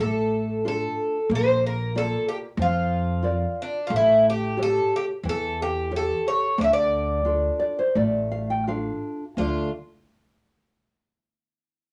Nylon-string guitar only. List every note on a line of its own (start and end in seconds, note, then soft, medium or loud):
0.00 0.63 A3 medium
0.65 1.18 D4 soft
0.65 1.17 F4 soft
0.65 1.18 A4 medium
1.31 1.93 A#3 medium
1.95 2.46 A#3 soft
1.95 2.46 F4 medium
1.95 2.46 D5 medium
2.59 3.22 F3 medium
3.23 3.77 F4 medium
3.23 3.77 A#4 medium
3.23 3.78 D5 medium
3.90 4.55 A3 medium
4.57 5.11 G4 medium
4.57 5.11 A4 medium
4.57 5.11 C#5 medium
5.25 5.90 E3 medium
5.91 6.45 G4 medium
5.91 6.45 A4 medium
5.91 6.45 C#5 medium
6.58 7.24 D3 medium
7.25 7.81 D4 soft
7.25 7.82 F4 soft
7.25 7.78 A4 medium
7.59 7.76 D5 medium
7.79 7.95 C5 medium
7.96 8.66 A3 medium
7.96 8.30 D5 medium
8.31 8.48 F5 medium
8.50 8.67 G5 medium
8.67 9.24 D4 soft
8.67 9.24 F4 soft
8.67 9.24 A4 medium
8.67 9.34 F5 medium
9.38 9.69 D3 soft
9.38 9.69 A3 soft
9.38 9.70 D4 soft
9.38 9.70 A4 soft
9.38 9.70 D5 medium
9.38 9.70 F5 soft